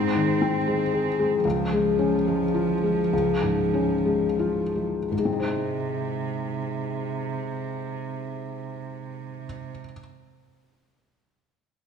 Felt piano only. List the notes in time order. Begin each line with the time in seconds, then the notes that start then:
Already playing: G#2
0.15 D#3
0.42 C4
0.67 G#3
0.93 G#4
1.19 G#3
1.45 C#2
1.73 G#3
1.99 C#4
2.28 G#3
2.54 F4
2.83 G#3
3.13 C#2
3.43 G#2
3.74 C#4
4.06 G#3
4.39 F4
4.75 G#3
5.11 G#2
5.19 G#3
5.25 C4
5.33 D#4
5.40 C5